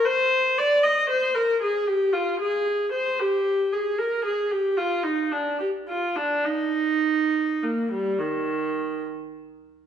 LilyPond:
\new Staff \with { instrumentName = "Viola" } { \time 12/8 \key ees \major \tempo 4. = 75 c''4 d''8 ees''8 c''8 bes'8 aes'8 g'8 f'8 aes'4 c''8 | g'4 aes'8 bes'8 aes'8 g'8 f'8 ees'8 d'8 g'8 f'8 d'8 | ees'2 bes8 g8 ees4. r4. | }